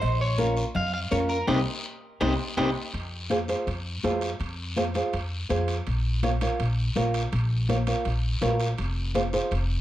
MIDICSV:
0, 0, Header, 1, 5, 480
1, 0, Start_track
1, 0, Key_signature, -4, "minor"
1, 0, Tempo, 365186
1, 28, Time_signature, 4, 2, 24, 8
1, 12893, End_track
2, 0, Start_track
2, 0, Title_t, "Clean electric guitar"
2, 0, Program_c, 0, 27
2, 0, Note_on_c, 0, 72, 93
2, 274, Note_off_c, 0, 72, 0
2, 279, Note_on_c, 0, 73, 91
2, 720, Note_off_c, 0, 73, 0
2, 997, Note_on_c, 0, 77, 94
2, 1216, Note_off_c, 0, 77, 0
2, 1231, Note_on_c, 0, 77, 80
2, 1297, Note_off_c, 0, 77, 0
2, 1466, Note_on_c, 0, 73, 78
2, 1532, Note_off_c, 0, 73, 0
2, 1700, Note_on_c, 0, 70, 83
2, 1938, Note_on_c, 0, 67, 96
2, 1939, Note_off_c, 0, 70, 0
2, 1944, Note_on_c, 0, 75, 84
2, 1945, Note_on_c, 0, 72, 86
2, 2094, Note_off_c, 0, 75, 0
2, 2096, Note_off_c, 0, 67, 0
2, 2097, Note_off_c, 0, 72, 0
2, 2900, Note_on_c, 0, 67, 95
2, 2904, Note_on_c, 0, 72, 79
2, 2905, Note_on_c, 0, 75, 84
2, 3054, Note_off_c, 0, 75, 0
2, 3056, Note_off_c, 0, 72, 0
2, 3057, Note_off_c, 0, 67, 0
2, 3381, Note_on_c, 0, 67, 96
2, 3384, Note_on_c, 0, 72, 80
2, 3389, Note_on_c, 0, 75, 70
2, 3536, Note_off_c, 0, 75, 0
2, 3537, Note_off_c, 0, 67, 0
2, 3537, Note_off_c, 0, 72, 0
2, 12893, End_track
3, 0, Start_track
3, 0, Title_t, "Nylon-string guitar"
3, 0, Program_c, 1, 24
3, 496, Note_on_c, 1, 61, 68
3, 505, Note_on_c, 1, 65, 66
3, 508, Note_on_c, 1, 70, 81
3, 838, Note_off_c, 1, 61, 0
3, 840, Note_off_c, 1, 65, 0
3, 843, Note_off_c, 1, 70, 0
3, 1459, Note_on_c, 1, 61, 74
3, 1465, Note_on_c, 1, 65, 66
3, 1471, Note_on_c, 1, 70, 85
3, 1798, Note_off_c, 1, 61, 0
3, 1801, Note_off_c, 1, 65, 0
3, 1804, Note_off_c, 1, 70, 0
3, 1945, Note_on_c, 1, 67, 94
3, 1946, Note_on_c, 1, 60, 93
3, 1949, Note_on_c, 1, 63, 103
3, 2097, Note_off_c, 1, 67, 0
3, 2099, Note_off_c, 1, 60, 0
3, 2101, Note_off_c, 1, 63, 0
3, 2897, Note_on_c, 1, 60, 97
3, 2903, Note_on_c, 1, 63, 91
3, 2910, Note_on_c, 1, 67, 92
3, 3055, Note_off_c, 1, 67, 0
3, 3056, Note_off_c, 1, 60, 0
3, 3056, Note_off_c, 1, 63, 0
3, 3383, Note_on_c, 1, 60, 99
3, 3386, Note_on_c, 1, 67, 88
3, 3388, Note_on_c, 1, 63, 87
3, 3538, Note_off_c, 1, 60, 0
3, 3538, Note_off_c, 1, 67, 0
3, 3540, Note_off_c, 1, 63, 0
3, 4335, Note_on_c, 1, 65, 86
3, 4344, Note_on_c, 1, 72, 91
3, 4345, Note_on_c, 1, 68, 72
3, 4424, Note_off_c, 1, 65, 0
3, 4427, Note_off_c, 1, 68, 0
3, 4428, Note_off_c, 1, 72, 0
3, 4576, Note_on_c, 1, 65, 67
3, 4584, Note_on_c, 1, 68, 68
3, 4590, Note_on_c, 1, 72, 74
3, 4833, Note_off_c, 1, 65, 0
3, 4835, Note_off_c, 1, 68, 0
3, 4839, Note_off_c, 1, 72, 0
3, 5308, Note_on_c, 1, 65, 78
3, 5312, Note_on_c, 1, 68, 75
3, 5316, Note_on_c, 1, 72, 85
3, 5643, Note_off_c, 1, 65, 0
3, 5644, Note_off_c, 1, 68, 0
3, 5647, Note_off_c, 1, 72, 0
3, 6261, Note_on_c, 1, 65, 76
3, 6267, Note_on_c, 1, 68, 75
3, 6272, Note_on_c, 1, 72, 88
3, 6348, Note_off_c, 1, 65, 0
3, 6350, Note_off_c, 1, 68, 0
3, 6353, Note_off_c, 1, 72, 0
3, 6505, Note_on_c, 1, 65, 70
3, 6513, Note_on_c, 1, 68, 64
3, 6519, Note_on_c, 1, 72, 73
3, 6758, Note_off_c, 1, 65, 0
3, 6761, Note_off_c, 1, 68, 0
3, 6765, Note_off_c, 1, 72, 0
3, 7219, Note_on_c, 1, 65, 87
3, 7228, Note_on_c, 1, 68, 79
3, 7230, Note_on_c, 1, 72, 94
3, 7560, Note_off_c, 1, 65, 0
3, 7562, Note_off_c, 1, 68, 0
3, 7565, Note_off_c, 1, 72, 0
3, 8188, Note_on_c, 1, 65, 84
3, 8195, Note_on_c, 1, 70, 66
3, 8204, Note_on_c, 1, 73, 92
3, 8272, Note_off_c, 1, 65, 0
3, 8277, Note_off_c, 1, 70, 0
3, 8278, Note_off_c, 1, 73, 0
3, 8430, Note_on_c, 1, 65, 78
3, 8435, Note_on_c, 1, 70, 60
3, 8443, Note_on_c, 1, 73, 80
3, 8681, Note_off_c, 1, 65, 0
3, 8684, Note_off_c, 1, 70, 0
3, 8687, Note_off_c, 1, 73, 0
3, 9144, Note_on_c, 1, 65, 78
3, 9150, Note_on_c, 1, 70, 82
3, 9157, Note_on_c, 1, 73, 93
3, 9483, Note_off_c, 1, 65, 0
3, 9485, Note_off_c, 1, 70, 0
3, 9489, Note_off_c, 1, 73, 0
3, 10103, Note_on_c, 1, 65, 85
3, 10111, Note_on_c, 1, 70, 65
3, 10115, Note_on_c, 1, 73, 91
3, 10190, Note_off_c, 1, 65, 0
3, 10195, Note_off_c, 1, 70, 0
3, 10195, Note_off_c, 1, 73, 0
3, 10345, Note_on_c, 1, 65, 70
3, 10351, Note_on_c, 1, 70, 63
3, 10355, Note_on_c, 1, 73, 76
3, 10599, Note_off_c, 1, 65, 0
3, 10601, Note_off_c, 1, 70, 0
3, 10604, Note_off_c, 1, 73, 0
3, 11058, Note_on_c, 1, 65, 74
3, 11066, Note_on_c, 1, 70, 73
3, 11067, Note_on_c, 1, 73, 84
3, 11400, Note_off_c, 1, 65, 0
3, 11402, Note_off_c, 1, 70, 0
3, 11404, Note_off_c, 1, 73, 0
3, 12020, Note_on_c, 1, 65, 83
3, 12027, Note_on_c, 1, 68, 75
3, 12031, Note_on_c, 1, 72, 85
3, 12108, Note_off_c, 1, 65, 0
3, 12112, Note_off_c, 1, 68, 0
3, 12112, Note_off_c, 1, 72, 0
3, 12259, Note_on_c, 1, 65, 67
3, 12268, Note_on_c, 1, 68, 56
3, 12272, Note_on_c, 1, 72, 82
3, 12517, Note_off_c, 1, 65, 0
3, 12518, Note_off_c, 1, 68, 0
3, 12522, Note_off_c, 1, 72, 0
3, 12893, End_track
4, 0, Start_track
4, 0, Title_t, "Upright bass"
4, 0, Program_c, 2, 32
4, 32, Note_on_c, 2, 34, 92
4, 797, Note_off_c, 2, 34, 0
4, 986, Note_on_c, 2, 41, 87
4, 1370, Note_off_c, 2, 41, 0
4, 1470, Note_on_c, 2, 41, 89
4, 1852, Note_off_c, 2, 41, 0
4, 1945, Note_on_c, 2, 36, 93
4, 2124, Note_off_c, 2, 36, 0
4, 2906, Note_on_c, 2, 36, 91
4, 3084, Note_off_c, 2, 36, 0
4, 3380, Note_on_c, 2, 36, 93
4, 3560, Note_off_c, 2, 36, 0
4, 3859, Note_on_c, 2, 41, 80
4, 4630, Note_off_c, 2, 41, 0
4, 4824, Note_on_c, 2, 41, 87
4, 5208, Note_off_c, 2, 41, 0
4, 5307, Note_on_c, 2, 41, 77
4, 5691, Note_off_c, 2, 41, 0
4, 5782, Note_on_c, 2, 41, 88
4, 6552, Note_off_c, 2, 41, 0
4, 6750, Note_on_c, 2, 41, 80
4, 7133, Note_off_c, 2, 41, 0
4, 7237, Note_on_c, 2, 41, 82
4, 7617, Note_off_c, 2, 41, 0
4, 7715, Note_on_c, 2, 34, 91
4, 8481, Note_off_c, 2, 34, 0
4, 8670, Note_on_c, 2, 34, 81
4, 9054, Note_off_c, 2, 34, 0
4, 9150, Note_on_c, 2, 34, 76
4, 9533, Note_off_c, 2, 34, 0
4, 9628, Note_on_c, 2, 34, 92
4, 10397, Note_off_c, 2, 34, 0
4, 10589, Note_on_c, 2, 34, 74
4, 10973, Note_off_c, 2, 34, 0
4, 11065, Note_on_c, 2, 34, 83
4, 11450, Note_off_c, 2, 34, 0
4, 11549, Note_on_c, 2, 29, 87
4, 12317, Note_off_c, 2, 29, 0
4, 12507, Note_on_c, 2, 29, 91
4, 12891, Note_off_c, 2, 29, 0
4, 12893, End_track
5, 0, Start_track
5, 0, Title_t, "Drums"
5, 21, Note_on_c, 9, 56, 99
5, 28, Note_on_c, 9, 63, 30
5, 31, Note_on_c, 9, 74, 69
5, 153, Note_off_c, 9, 56, 0
5, 160, Note_off_c, 9, 63, 0
5, 163, Note_off_c, 9, 74, 0
5, 505, Note_on_c, 9, 56, 72
5, 505, Note_on_c, 9, 73, 71
5, 509, Note_on_c, 9, 63, 81
5, 636, Note_off_c, 9, 56, 0
5, 636, Note_off_c, 9, 73, 0
5, 640, Note_off_c, 9, 63, 0
5, 745, Note_on_c, 9, 73, 75
5, 876, Note_off_c, 9, 73, 0
5, 982, Note_on_c, 9, 74, 75
5, 984, Note_on_c, 9, 56, 74
5, 985, Note_on_c, 9, 63, 35
5, 985, Note_on_c, 9, 64, 73
5, 1114, Note_off_c, 9, 74, 0
5, 1116, Note_off_c, 9, 56, 0
5, 1117, Note_off_c, 9, 63, 0
5, 1117, Note_off_c, 9, 64, 0
5, 1459, Note_on_c, 9, 73, 72
5, 1465, Note_on_c, 9, 63, 67
5, 1470, Note_on_c, 9, 56, 75
5, 1591, Note_off_c, 9, 73, 0
5, 1596, Note_off_c, 9, 63, 0
5, 1601, Note_off_c, 9, 56, 0
5, 1696, Note_on_c, 9, 73, 65
5, 1827, Note_off_c, 9, 73, 0
5, 1939, Note_on_c, 9, 63, 94
5, 1943, Note_on_c, 9, 74, 104
5, 1947, Note_on_c, 9, 65, 97
5, 2070, Note_off_c, 9, 63, 0
5, 2075, Note_off_c, 9, 74, 0
5, 2078, Note_off_c, 9, 65, 0
5, 2900, Note_on_c, 9, 74, 102
5, 2901, Note_on_c, 9, 63, 94
5, 2910, Note_on_c, 9, 65, 94
5, 3031, Note_off_c, 9, 74, 0
5, 3032, Note_off_c, 9, 63, 0
5, 3041, Note_off_c, 9, 65, 0
5, 3380, Note_on_c, 9, 63, 85
5, 3389, Note_on_c, 9, 65, 106
5, 3512, Note_off_c, 9, 63, 0
5, 3520, Note_off_c, 9, 65, 0
5, 3856, Note_on_c, 9, 74, 64
5, 3864, Note_on_c, 9, 63, 27
5, 3867, Note_on_c, 9, 65, 61
5, 3988, Note_off_c, 9, 74, 0
5, 3996, Note_off_c, 9, 63, 0
5, 3999, Note_off_c, 9, 65, 0
5, 4342, Note_on_c, 9, 63, 68
5, 4343, Note_on_c, 9, 73, 66
5, 4348, Note_on_c, 9, 65, 67
5, 4473, Note_off_c, 9, 63, 0
5, 4474, Note_off_c, 9, 73, 0
5, 4480, Note_off_c, 9, 65, 0
5, 4577, Note_on_c, 9, 73, 68
5, 4593, Note_on_c, 9, 65, 63
5, 4709, Note_off_c, 9, 73, 0
5, 4724, Note_off_c, 9, 65, 0
5, 4824, Note_on_c, 9, 63, 33
5, 4827, Note_on_c, 9, 74, 69
5, 4835, Note_on_c, 9, 65, 56
5, 4955, Note_off_c, 9, 63, 0
5, 4958, Note_off_c, 9, 74, 0
5, 4967, Note_off_c, 9, 65, 0
5, 5301, Note_on_c, 9, 73, 62
5, 5304, Note_on_c, 9, 63, 62
5, 5316, Note_on_c, 9, 65, 62
5, 5316, Note_on_c, 9, 66, 68
5, 5432, Note_off_c, 9, 73, 0
5, 5435, Note_off_c, 9, 63, 0
5, 5448, Note_off_c, 9, 65, 0
5, 5448, Note_off_c, 9, 66, 0
5, 5539, Note_on_c, 9, 73, 67
5, 5547, Note_on_c, 9, 65, 60
5, 5670, Note_off_c, 9, 73, 0
5, 5679, Note_off_c, 9, 65, 0
5, 5777, Note_on_c, 9, 74, 62
5, 5782, Note_on_c, 9, 63, 27
5, 5791, Note_on_c, 9, 65, 58
5, 5909, Note_off_c, 9, 74, 0
5, 5913, Note_off_c, 9, 63, 0
5, 5922, Note_off_c, 9, 65, 0
5, 6257, Note_on_c, 9, 73, 67
5, 6264, Note_on_c, 9, 63, 71
5, 6276, Note_on_c, 9, 65, 63
5, 6389, Note_off_c, 9, 73, 0
5, 6395, Note_off_c, 9, 63, 0
5, 6408, Note_off_c, 9, 65, 0
5, 6496, Note_on_c, 9, 73, 65
5, 6509, Note_on_c, 9, 65, 62
5, 6627, Note_off_c, 9, 73, 0
5, 6640, Note_off_c, 9, 65, 0
5, 6743, Note_on_c, 9, 74, 62
5, 6744, Note_on_c, 9, 63, 28
5, 6750, Note_on_c, 9, 65, 61
5, 6875, Note_off_c, 9, 74, 0
5, 6876, Note_off_c, 9, 63, 0
5, 6882, Note_off_c, 9, 65, 0
5, 7223, Note_on_c, 9, 73, 60
5, 7230, Note_on_c, 9, 63, 66
5, 7232, Note_on_c, 9, 65, 59
5, 7354, Note_off_c, 9, 73, 0
5, 7361, Note_off_c, 9, 63, 0
5, 7364, Note_off_c, 9, 65, 0
5, 7465, Note_on_c, 9, 65, 68
5, 7469, Note_on_c, 9, 73, 69
5, 7597, Note_off_c, 9, 65, 0
5, 7601, Note_off_c, 9, 73, 0
5, 7708, Note_on_c, 9, 74, 66
5, 7711, Note_on_c, 9, 65, 56
5, 7713, Note_on_c, 9, 63, 29
5, 7839, Note_off_c, 9, 74, 0
5, 7843, Note_off_c, 9, 65, 0
5, 7845, Note_off_c, 9, 63, 0
5, 8187, Note_on_c, 9, 63, 77
5, 8188, Note_on_c, 9, 73, 58
5, 8191, Note_on_c, 9, 65, 66
5, 8318, Note_off_c, 9, 63, 0
5, 8320, Note_off_c, 9, 73, 0
5, 8323, Note_off_c, 9, 65, 0
5, 8426, Note_on_c, 9, 73, 68
5, 8428, Note_on_c, 9, 65, 72
5, 8557, Note_off_c, 9, 73, 0
5, 8560, Note_off_c, 9, 65, 0
5, 8663, Note_on_c, 9, 63, 31
5, 8672, Note_on_c, 9, 65, 62
5, 8674, Note_on_c, 9, 74, 66
5, 8795, Note_off_c, 9, 63, 0
5, 8803, Note_off_c, 9, 65, 0
5, 8805, Note_off_c, 9, 74, 0
5, 9144, Note_on_c, 9, 63, 74
5, 9152, Note_on_c, 9, 73, 67
5, 9153, Note_on_c, 9, 65, 62
5, 9275, Note_off_c, 9, 63, 0
5, 9284, Note_off_c, 9, 65, 0
5, 9284, Note_off_c, 9, 73, 0
5, 9388, Note_on_c, 9, 73, 65
5, 9390, Note_on_c, 9, 65, 65
5, 9519, Note_off_c, 9, 73, 0
5, 9521, Note_off_c, 9, 65, 0
5, 9624, Note_on_c, 9, 63, 32
5, 9624, Note_on_c, 9, 74, 66
5, 9630, Note_on_c, 9, 65, 66
5, 9755, Note_off_c, 9, 63, 0
5, 9756, Note_off_c, 9, 74, 0
5, 9762, Note_off_c, 9, 65, 0
5, 10106, Note_on_c, 9, 73, 66
5, 10109, Note_on_c, 9, 63, 78
5, 10115, Note_on_c, 9, 65, 61
5, 10238, Note_off_c, 9, 73, 0
5, 10240, Note_off_c, 9, 63, 0
5, 10246, Note_off_c, 9, 65, 0
5, 10344, Note_on_c, 9, 65, 68
5, 10348, Note_on_c, 9, 73, 66
5, 10475, Note_off_c, 9, 65, 0
5, 10480, Note_off_c, 9, 73, 0
5, 10584, Note_on_c, 9, 65, 56
5, 10589, Note_on_c, 9, 74, 71
5, 10590, Note_on_c, 9, 63, 31
5, 10716, Note_off_c, 9, 65, 0
5, 10720, Note_off_c, 9, 74, 0
5, 10721, Note_off_c, 9, 63, 0
5, 11061, Note_on_c, 9, 73, 69
5, 11065, Note_on_c, 9, 65, 59
5, 11065, Note_on_c, 9, 66, 67
5, 11067, Note_on_c, 9, 63, 65
5, 11192, Note_off_c, 9, 73, 0
5, 11197, Note_off_c, 9, 65, 0
5, 11197, Note_off_c, 9, 66, 0
5, 11198, Note_off_c, 9, 63, 0
5, 11299, Note_on_c, 9, 73, 67
5, 11308, Note_on_c, 9, 65, 61
5, 11431, Note_off_c, 9, 73, 0
5, 11439, Note_off_c, 9, 65, 0
5, 11535, Note_on_c, 9, 74, 65
5, 11545, Note_on_c, 9, 65, 67
5, 11550, Note_on_c, 9, 63, 31
5, 11667, Note_off_c, 9, 74, 0
5, 11677, Note_off_c, 9, 65, 0
5, 11682, Note_off_c, 9, 63, 0
5, 12021, Note_on_c, 9, 73, 62
5, 12024, Note_on_c, 9, 63, 78
5, 12030, Note_on_c, 9, 65, 71
5, 12152, Note_off_c, 9, 73, 0
5, 12155, Note_off_c, 9, 63, 0
5, 12161, Note_off_c, 9, 65, 0
5, 12265, Note_on_c, 9, 73, 68
5, 12272, Note_on_c, 9, 65, 59
5, 12397, Note_off_c, 9, 73, 0
5, 12404, Note_off_c, 9, 65, 0
5, 12503, Note_on_c, 9, 74, 65
5, 12511, Note_on_c, 9, 65, 61
5, 12513, Note_on_c, 9, 63, 31
5, 12634, Note_off_c, 9, 74, 0
5, 12642, Note_off_c, 9, 65, 0
5, 12644, Note_off_c, 9, 63, 0
5, 12893, End_track
0, 0, End_of_file